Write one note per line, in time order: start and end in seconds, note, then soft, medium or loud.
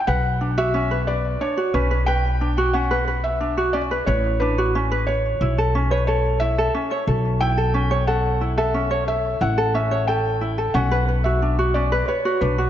0.07 1.35 B1 medium
0.07 0.39 B4 medium
0.07 0.59 F#5 loud
0.41 0.56 D4 medium
0.58 0.73 F#4 loud
0.58 1.09 E5 loud
0.74 0.89 C#4 loud
0.91 1.06 B4 medium
1.07 1.39 B4 medium
1.07 1.42 D5 medium
1.41 1.56 D4 medium
1.41 1.75 C#5 medium
1.57 1.73 F#4 loud
1.74 4.01 B1 loud
1.74 1.89 C#4 loud
1.74 2.09 B4 medium
1.91 2.06 B4 medium
2.06 2.39 B4 medium
2.06 2.76 G5 loud
2.41 2.56 D4 medium
2.58 2.73 F#4 loud
2.73 2.89 C#4 loud
2.73 3.20 F#5 loud
2.91 3.06 B4 loud
3.08 3.39 B4 medium
3.24 3.76 E5 medium
3.41 3.56 D4 medium
3.57 3.73 F#4 loud
3.73 3.89 C#4 medium
3.73 3.81 D5 medium
3.91 4.06 B4 loud
4.06 5.34 A1 loud
4.06 4.39 B4 medium
4.06 4.41 C#5 loud
4.40 4.56 D4 medium
4.40 5.09 B4 medium
4.58 4.73 F#4 loud
4.75 4.90 C#4 loud
4.91 5.06 B4 loud
5.07 5.40 B4 medium
5.07 5.93 C#5 medium
5.41 6.68 B1 loud
5.41 5.56 E4 medium
5.58 5.73 A4 loud
5.75 5.90 C#4 loud
5.91 6.06 B4 medium
5.91 6.06 C#5 loud
6.07 6.39 A4 medium
6.07 6.38 C#5 medium
6.40 6.56 E4 medium
6.40 7.43 E5 loud
6.58 6.73 A4 loud
6.75 6.89 C#4 loud
6.91 7.06 C#5 loud
7.07 9.34 B1 loud
7.07 7.39 A4 medium
7.41 7.56 E4 medium
7.41 8.03 G5 loud
7.58 7.73 A4 medium
7.74 7.89 C#4 loud
7.91 8.06 C#5 loud
8.07 8.39 A4 medium
8.07 8.59 F#5 medium
8.41 8.56 E4 medium
8.58 8.73 A4 loud
8.58 9.06 E5 loud
8.74 8.89 C#4 medium
8.91 9.06 C#5 loud
9.07 9.39 A4 medium
9.07 9.39 E5 loud
9.41 10.68 A1 loud
9.41 9.56 E4 medium
9.41 9.72 F#5 loud
9.58 9.73 A4 loud
9.74 9.89 C#4 loud
9.74 10.09 E5 loud
9.91 10.06 C#5 loud
10.08 10.40 A4 medium
10.08 10.70 G5 medium
10.41 10.56 E4 medium
10.58 10.73 A4 loud
10.74 12.01 B1 loud
10.74 10.89 C#4 loud
10.74 11.26 F#5 loud
10.91 11.06 B4 loud
11.08 11.23 B4 medium
11.24 11.40 F#4 medium
11.24 11.76 E5 medium
11.42 11.57 D4 medium
11.59 11.73 F#4 loud
11.74 11.90 C#4 medium
11.74 12.05 D5 medium
11.92 12.06 B4 loud
12.08 12.23 B4 medium
12.08 12.42 C#5 medium
12.25 12.40 F#4 loud
12.41 12.70 B1 medium
12.41 12.56 D4 medium
12.41 12.70 B4 medium
12.58 12.70 F#4 loud